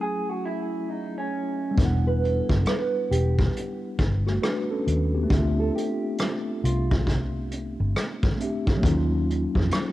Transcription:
Already playing: F#3 A3 C#4 E4 G#4
0.01 G#4
0.29 F#4
0.46 E4
0.89 D#4
1.18 C#4
1.71 G3 B3
1.78 E1 D4, kick, closed hi-hat
1.82 E4 F#5
2.07 B4
2.24 A4, closed hi-hat
2.50 F#1, kick
2.66 B4, cross-stick, closed hi-hat
3.11 E1 G4, closed hi-hat
3.39 kick
3.57 closed hi-hat
3.99 G1, kick, closed hi-hat
4.27 A3 F#4, cross-stick
4.42 D4 B4, cross-stick, closed hi-hat
4.71 C#4 A4
4.87 D#2, closed hi-hat
5.15 B3 G4
5.23 A3 C4
5.30 D2 D4 E5, kick, closed hi-hat
5.38 F4
5.60 A4
5.75 G4, closed hi-hat
6.18 A4, cross-stick, closed hi-hat
6.64 C2 F4, closed hi-hat
6.91 kick
7.07 kick, closed hi-hat
7.52 closed hi-hat
7.80 G1
7.96 cross-stick, closed hi-hat
8.23 kick
8.36 A3 C4 D4
8.40 G4 E5, closed hi-hat
8.67 kick
8.77 F#3 A#3
8.83 D#2 C#4, kick, closed hi-hat
8.88 D#4 F4
9.30 closed hi-hat
9.55 F2, kick
9.71 cross-stick, closed hi-hat

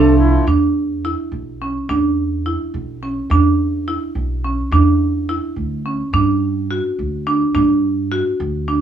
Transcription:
Already playing: C2 F3 A3 D4 F4 A4
0.19 E4
0.47 E2 D4
1.05 E4
1.32 B1
1.62 C#4
1.89 E2 D4
2.46 E4
2.74 B1
3.03 C#4
3.30 E2 D4
3.88 E4
4.15 B1
4.44 C#4
4.71 E2 D4
5.29 E4
5.56 D2
5.86 C#4
6.13 G2 D4
6.71 F#4
6.99 D2
7.27 D4
7.54 G2 D4
8.12 F#4
8.40 D2
8.68 D4

